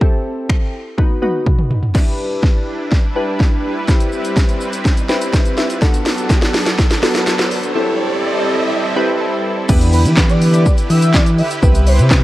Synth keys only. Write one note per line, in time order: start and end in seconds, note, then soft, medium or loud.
0.01 0.75 C4 medium
0.01 0.75 E4 medium
0.01 0.75 G4 medium
0.01 0.75 A4 medium
0.98 1.17 B3 medium
0.98 1.17 D#4 medium
0.98 1.17 F#4 medium
0.98 1.18 B4 medium
1.22 1.77 B3 medium
1.22 1.77 D#4 medium
1.22 1.77 F#4 medium
1.22 1.78 B4 medium
1.94 2.68 D4 medium
1.94 2.68 E4 medium
1.94 2.68 G4 medium
1.94 2.68 B4 medium
3.15 3.71 D4 medium
3.15 3.71 E4 medium
3.15 3.71 G4 medium
3.15 3.71 B4 medium
3.88 4.62 C4 medium
3.88 4.62 E4 medium
3.88 4.62 G4 medium
3.88 4.62 B4 medium
5.09 5.64 C4 medium
5.09 5.64 E4 medium
5.09 5.64 G4 medium
5.09 5.65 B4 loud
5.33 5.56 G5 medium
5.58 5.80 E5 medium
5.82 6.55 B3 medium
5.82 6.55 D4 medium
5.82 6.55 F#4 medium
5.82 6.56 A4 loud
7.03 7.58 B3 medium
7.03 7.58 D4 medium
7.03 7.58 F#4 medium
7.03 7.58 A4 loud
7.75 8.49 C4 medium
7.75 8.49 E4 medium
7.75 8.49 G4 medium
7.75 8.49 A4 loud
8.96 9.51 C4 medium
8.96 9.52 E4 medium
8.96 9.52 G4 medium
8.96 9.52 B4 loud
8.96 9.19 G5 medium
9.21 9.66 A5 medium
9.69 10.06 B3 loud
9.69 10.06 D4 medium
9.69 10.06 E4 medium
9.69 10.06 G4 medium
9.69 10.06 B4 loud
10.17 10.91 B3 medium
10.17 10.91 D4 medium
10.17 10.91 E4 medium
10.17 10.91 G4 medium
10.17 10.91 B4 medium
11.62 11.99 B3 loud
11.62 11.99 C4 medium
11.62 11.99 E4 medium
11.62 11.99 G4 medium
11.62 11.99 B4 loud
12.11 12.24 B3 medium
12.11 12.24 C4 medium
12.11 12.24 E4 medium
12.11 12.24 G4 medium
12.11 12.24 B4 medium